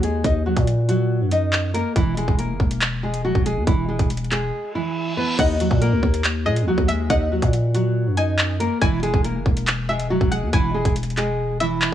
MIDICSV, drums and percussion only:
0, 0, Header, 1, 2, 480
1, 0, Start_track
1, 0, Tempo, 428571
1, 273, Time_signature, 4, 2, 24, 8
1, 13375, End_track
2, 0, Start_track
2, 0, Title_t, "Drums"
2, 36, Note_on_c, 9, 42, 87
2, 148, Note_off_c, 9, 42, 0
2, 274, Note_on_c, 9, 36, 119
2, 274, Note_on_c, 9, 42, 89
2, 386, Note_off_c, 9, 36, 0
2, 386, Note_off_c, 9, 42, 0
2, 634, Note_on_c, 9, 36, 94
2, 634, Note_on_c, 9, 42, 74
2, 746, Note_off_c, 9, 36, 0
2, 746, Note_off_c, 9, 42, 0
2, 755, Note_on_c, 9, 42, 78
2, 867, Note_off_c, 9, 42, 0
2, 995, Note_on_c, 9, 42, 80
2, 1107, Note_off_c, 9, 42, 0
2, 1474, Note_on_c, 9, 42, 82
2, 1586, Note_off_c, 9, 42, 0
2, 1714, Note_on_c, 9, 39, 111
2, 1826, Note_off_c, 9, 39, 0
2, 1955, Note_on_c, 9, 42, 83
2, 2067, Note_off_c, 9, 42, 0
2, 2193, Note_on_c, 9, 42, 87
2, 2194, Note_on_c, 9, 36, 122
2, 2305, Note_off_c, 9, 42, 0
2, 2306, Note_off_c, 9, 36, 0
2, 2434, Note_on_c, 9, 42, 82
2, 2546, Note_off_c, 9, 42, 0
2, 2553, Note_on_c, 9, 36, 92
2, 2665, Note_off_c, 9, 36, 0
2, 2674, Note_on_c, 9, 42, 83
2, 2786, Note_off_c, 9, 42, 0
2, 2912, Note_on_c, 9, 36, 93
2, 3024, Note_off_c, 9, 36, 0
2, 3035, Note_on_c, 9, 42, 79
2, 3147, Note_off_c, 9, 42, 0
2, 3154, Note_on_c, 9, 39, 119
2, 3154, Note_on_c, 9, 42, 78
2, 3266, Note_off_c, 9, 39, 0
2, 3266, Note_off_c, 9, 42, 0
2, 3513, Note_on_c, 9, 42, 80
2, 3625, Note_off_c, 9, 42, 0
2, 3753, Note_on_c, 9, 36, 91
2, 3865, Note_off_c, 9, 36, 0
2, 3875, Note_on_c, 9, 42, 84
2, 3987, Note_off_c, 9, 42, 0
2, 4114, Note_on_c, 9, 36, 120
2, 4114, Note_on_c, 9, 42, 88
2, 4226, Note_off_c, 9, 36, 0
2, 4226, Note_off_c, 9, 42, 0
2, 4474, Note_on_c, 9, 36, 94
2, 4474, Note_on_c, 9, 42, 76
2, 4586, Note_off_c, 9, 36, 0
2, 4586, Note_off_c, 9, 42, 0
2, 4594, Note_on_c, 9, 42, 77
2, 4674, Note_off_c, 9, 42, 0
2, 4674, Note_on_c, 9, 42, 63
2, 4754, Note_off_c, 9, 42, 0
2, 4754, Note_on_c, 9, 42, 46
2, 4833, Note_on_c, 9, 39, 70
2, 4834, Note_off_c, 9, 42, 0
2, 4834, Note_on_c, 9, 42, 78
2, 4945, Note_off_c, 9, 39, 0
2, 4946, Note_off_c, 9, 42, 0
2, 6034, Note_on_c, 9, 36, 124
2, 6034, Note_on_c, 9, 42, 87
2, 6034, Note_on_c, 9, 49, 104
2, 6146, Note_off_c, 9, 36, 0
2, 6146, Note_off_c, 9, 42, 0
2, 6146, Note_off_c, 9, 49, 0
2, 6274, Note_on_c, 9, 42, 83
2, 6386, Note_off_c, 9, 42, 0
2, 6394, Note_on_c, 9, 36, 92
2, 6506, Note_off_c, 9, 36, 0
2, 6515, Note_on_c, 9, 42, 85
2, 6627, Note_off_c, 9, 42, 0
2, 6753, Note_on_c, 9, 36, 93
2, 6865, Note_off_c, 9, 36, 0
2, 6875, Note_on_c, 9, 42, 79
2, 6987, Note_off_c, 9, 42, 0
2, 6994, Note_on_c, 9, 39, 124
2, 6994, Note_on_c, 9, 42, 78
2, 7106, Note_off_c, 9, 39, 0
2, 7106, Note_off_c, 9, 42, 0
2, 7353, Note_on_c, 9, 42, 81
2, 7465, Note_off_c, 9, 42, 0
2, 7594, Note_on_c, 9, 36, 90
2, 7706, Note_off_c, 9, 36, 0
2, 7716, Note_on_c, 9, 42, 87
2, 7828, Note_off_c, 9, 42, 0
2, 7954, Note_on_c, 9, 36, 124
2, 7954, Note_on_c, 9, 42, 91
2, 8066, Note_off_c, 9, 36, 0
2, 8066, Note_off_c, 9, 42, 0
2, 8314, Note_on_c, 9, 36, 96
2, 8314, Note_on_c, 9, 42, 74
2, 8426, Note_off_c, 9, 36, 0
2, 8426, Note_off_c, 9, 42, 0
2, 8435, Note_on_c, 9, 42, 77
2, 8547, Note_off_c, 9, 42, 0
2, 8675, Note_on_c, 9, 42, 80
2, 8787, Note_off_c, 9, 42, 0
2, 9154, Note_on_c, 9, 42, 83
2, 9266, Note_off_c, 9, 42, 0
2, 9394, Note_on_c, 9, 39, 114
2, 9506, Note_off_c, 9, 39, 0
2, 9635, Note_on_c, 9, 42, 84
2, 9747, Note_off_c, 9, 42, 0
2, 9873, Note_on_c, 9, 42, 87
2, 9874, Note_on_c, 9, 36, 123
2, 9985, Note_off_c, 9, 42, 0
2, 9986, Note_off_c, 9, 36, 0
2, 10114, Note_on_c, 9, 42, 81
2, 10226, Note_off_c, 9, 42, 0
2, 10234, Note_on_c, 9, 36, 96
2, 10346, Note_off_c, 9, 36, 0
2, 10355, Note_on_c, 9, 42, 86
2, 10467, Note_off_c, 9, 42, 0
2, 10593, Note_on_c, 9, 36, 95
2, 10705, Note_off_c, 9, 36, 0
2, 10715, Note_on_c, 9, 42, 79
2, 10827, Note_off_c, 9, 42, 0
2, 10834, Note_on_c, 9, 39, 125
2, 10834, Note_on_c, 9, 42, 77
2, 10946, Note_off_c, 9, 39, 0
2, 10946, Note_off_c, 9, 42, 0
2, 11194, Note_on_c, 9, 42, 81
2, 11306, Note_off_c, 9, 42, 0
2, 11434, Note_on_c, 9, 36, 91
2, 11546, Note_off_c, 9, 36, 0
2, 11555, Note_on_c, 9, 42, 84
2, 11667, Note_off_c, 9, 42, 0
2, 11794, Note_on_c, 9, 36, 121
2, 11794, Note_on_c, 9, 42, 90
2, 11906, Note_off_c, 9, 36, 0
2, 11906, Note_off_c, 9, 42, 0
2, 12154, Note_on_c, 9, 36, 93
2, 12154, Note_on_c, 9, 42, 76
2, 12266, Note_off_c, 9, 36, 0
2, 12266, Note_off_c, 9, 42, 0
2, 12274, Note_on_c, 9, 42, 82
2, 12354, Note_off_c, 9, 42, 0
2, 12354, Note_on_c, 9, 42, 64
2, 12434, Note_off_c, 9, 42, 0
2, 12434, Note_on_c, 9, 42, 47
2, 12513, Note_on_c, 9, 39, 72
2, 12514, Note_off_c, 9, 42, 0
2, 12514, Note_on_c, 9, 42, 83
2, 12625, Note_off_c, 9, 39, 0
2, 12626, Note_off_c, 9, 42, 0
2, 12994, Note_on_c, 9, 42, 83
2, 13106, Note_off_c, 9, 42, 0
2, 13233, Note_on_c, 9, 39, 111
2, 13345, Note_off_c, 9, 39, 0
2, 13375, End_track
0, 0, End_of_file